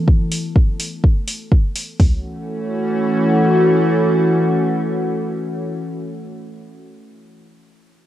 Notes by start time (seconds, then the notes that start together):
0.08 kick
0.32 open hi-hat
0.56 kick
0.80 open hi-hat
1.04 kick
1.28 open hi-hat
1.52 kick
1.76 open hi-hat
2.00 E3 A3 C#4 F#4, kick, floor tom, open hi-hat